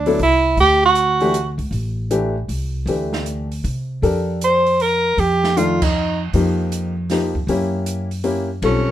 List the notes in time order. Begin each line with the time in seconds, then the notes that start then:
Already playing: D2 D4
0.06 F#3 B3 E4 A4, open hi-hat
0.19 C2 E4, open hi-hat
0.57 D2 G4, open hi-hat
0.85 F#4
0.95 closed hi-hat
1.20 E3 A3 D4 G4, open hi-hat
1.34 closed hi-hat
1.58 C#2, open hi-hat
1.71 A1, open hi-hat
2.11 E3 A3 D4 G4, closed hi-hat
2.48 C2, open hi-hat
2.86 D2 E3 A3 D4 G4, open hi-hat
3.13 snare
3.26 closed hi-hat
3.52 open hi-hat
3.64 C3, open hi-hat
4.02 F2 D4 G4 A4 A#4, open hi-hat
4.41 C5, closed hi-hat
4.67 open hi-hat
4.80 A#4, open hi-hat
5.17 F2 G4, open hi-hat
5.44 snare
5.57 D#3 A3 D4 F4, closed hi-hat
5.82 D#4, kick, crash
6.33 F2 F3 A#3 D#4 G4, open hi-hat
6.72 closed hi-hat
7.10 F3 A#3 D#4 G4, snare, open hi-hat
7.35 kick
7.47 F#2 A#3 C#4 E4 G4, open hi-hat
7.86 closed hi-hat
8.11 open hi-hat
8.24 A#3 C#4 E4 G4, open hi-hat
8.62 B1 G3 C4 C#4 F4 A4, ride